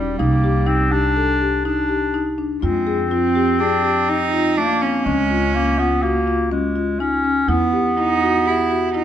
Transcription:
0.00 0.15 E1 medium
0.00 0.15 G3 medium
0.00 1.42 G3 medium
0.00 0.12 C#4 medium
0.18 2.59 C2 medium
0.18 0.69 A#3 medium
0.18 0.36 D#4 medium
0.44 0.61 G4 medium
0.67 0.93 C4 medium
0.67 0.84 D#4 medium
0.92 1.65 D4 loud
0.92 1.09 G4 medium
1.16 1.34 A4 medium
1.42 1.58 G4 medium
1.65 2.32 D4 medium
1.65 1.82 D#4 medium
1.89 2.06 G4 medium
2.14 2.31 D#4 medium
2.38 2.55 D4 medium
2.62 5.02 F2 medium
2.62 3.08 G#3 medium
2.62 4.53 C4 medium
2.62 2.79 F4 medium
2.87 3.04 G#4 medium
3.11 3.61 C4 medium
3.11 3.28 F4 medium
3.35 3.52 G4 medium
3.59 4.11 D4 medium
3.59 3.76 G#4 medium
3.84 4.01 G4 medium
4.08 4.25 D#4 medium
4.08 4.59 D#4 loud
4.32 4.50 F4 medium
4.57 5.07 A#3 medium
4.57 4.74 D4 medium
4.57 4.84 D4 medium
4.82 4.99 C4 medium
4.82 6.28 C#4 medium
5.06 7.45 C#2 medium
5.06 5.57 G#3 medium
5.06 5.23 C#4 medium
5.30 5.47 F4 medium
5.55 5.80 A#3 medium
5.55 5.72 C#4 medium
5.79 6.04 B3 medium
5.79 5.96 F4 medium
6.02 6.51 A#3 medium
6.02 6.20 F#4 medium
6.27 6.44 F4 medium
6.51 7.01 G#3 medium
6.51 6.68 C#4 medium
6.76 6.93 F4 medium
7.00 7.50 C#4 medium
7.00 7.17 D#4 medium
7.24 7.41 C#4 medium
7.48 9.04 E2 medium
7.48 9.04 B3 medium
7.48 7.95 B3 medium
7.48 7.66 E4 medium
7.73 7.90 G4 medium
7.97 8.49 D#4 medium
7.97 8.14 E4 medium
8.22 8.39 F#4 medium
8.46 8.95 E4 medium
8.46 8.63 G4 medium
8.70 8.87 F#4 medium
8.94 9.04 D#4 medium
8.94 9.04 E4 medium

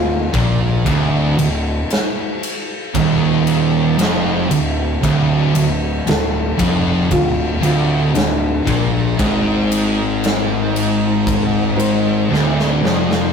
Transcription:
0.00 0.29 D1 medium
0.00 0.23 D2 medium
0.00 1.88 F4 loud
0.33 0.83 A#1 medium
0.33 0.84 A#2 loud
0.33 kick loud
0.33 ride medium
0.85 1.35 D1 medium
0.85 1.36 D2 loud
0.85 kick loud
0.85 ride loud
1.38 1.87 D1 medium
1.38 1.80 D2 medium
1.38 ride medium
1.90 snare loud
1.90 ride loud
2.43 ride medium
2.94 3.95 D#1 medium
2.94 3.97 D#2 loud
2.94 kick loud
2.94 ride loud
3.47 ride medium
3.98 4.47 F1 medium
3.98 4.49 F2 loud
3.98 snare loud
3.98 ride loud
4.50 5.00 D1 medium
4.50 4.92 D2 medium
4.50 ride medium
5.03 5.52 D1 medium
5.03 5.53 D2 loud
5.03 kick loud
5.03 ride loud
5.54 6.03 D1 medium
5.54 5.96 D2 medium
5.54 ride medium
6.06 6.55 D1 medium
6.06 6.48 D2 medium
6.06 7.09 A4 loud
6.06 snare loud
6.06 ride loud
6.57 7.07 F1 loud
6.57 7.08 F2 loud
6.57 kick loud
6.57 ride medium
7.09 7.59 D1 medium
7.09 7.51 D2 medium
7.09 7.62 F4 medium
7.09 kick medium
7.09 ride loud
7.60 8.11 D1 medium
7.60 8.12 D2 loud
7.60 8.14 F4 medium
7.60 ride medium
8.13 8.63 D1 medium
8.13 8.56 D2 medium
8.13 10.18 D4 loud
8.13 snare loud
8.13 ride medium
8.65 9.15 A#1 loud
8.65 9.16 A#2 loud
8.65 kick loud
8.65 ride medium
9.18 12.26 G#1 medium
9.18 12.28 G#2 loud
9.18 kick loud
9.18 ride loud
9.72 ride medium
10.24 snare loud
10.24 ride medium
10.76 ride medium
11.27 kick loud
11.27 ride loud
11.77 12.81 C5 medium
11.77 ride medium
12.28 12.79 D1 loud
12.28 12.80 D2 loud
12.34 snare medium
12.59 snare medium
12.81 13.31 F1 loud
12.81 13.32 F2 loud
12.81 13.33 D5 medium
12.85 snare loud
13.11 snare medium

